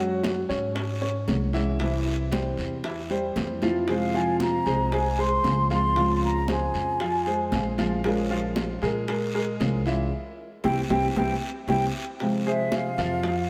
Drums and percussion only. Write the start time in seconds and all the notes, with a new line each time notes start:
0.23 high bongo, high conga, short guiro
0.50 high conga, short guiro
0.75 high bongo, high conga, long guiro
1.02 high bongo, high conga
1.28 high bongo, low bongo, high conga, short guiro
1.53 high bongo, short guiro
1.79 high bongo, high conga, long guiro
2.06 high bongo, high conga
2.31 high bongo, high conga, short guiro
2.57 high conga, short guiro
2.84 high bongo, high conga, long guiro
3.10 high bongo, high conga
3.36 high bongo, low bongo, high conga, short guiro
3.62 high bongo, high conga, short guiro
3.88 high bongo, high conga, long guiro
4.14 high bongo, high conga
4.40 high bongo, high conga, short guiro
4.66 high conga, short guiro
4.92 high bongo, high conga, long guiro
5.18 high bongo, high conga
5.44 high bongo, low bongo, high conga, short guiro
5.70 high bongo, short guiro
5.96 high bongo, high conga, long guiro
6.22 high bongo, high conga
6.48 high bongo, high conga, short guiro
6.74 high conga, short guiro
7.00 high bongo, high conga, long guiro
7.26 high bongo, high conga
7.52 high bongo, low bongo, high conga, short guiro
7.78 high bongo, high conga, short guiro
8.04 high bongo, high conga, long guiro
8.30 high bongo, high conga
8.56 high bongo, high conga, short guiro
8.82 high conga, short guiro
9.08 high bongo, high conga, long guiro
9.34 high bongo, high conga
9.60 high bongo, low bongo, high conga, short guiro
9.86 high bongo, short guiro
10.64 high bongo, high conga, long guiro
10.90 high bongo, high conga, long guiro
11.16 high bongo, high conga, long guiro
11.68 high bongo, high conga, long guiro
12.19 high bongo, high conga, long guiro
12.47 high conga
12.72 high bongo, high conga, short guiro
12.98 high conga, low conga, short guiro
13.23 high bongo, high conga, long guiro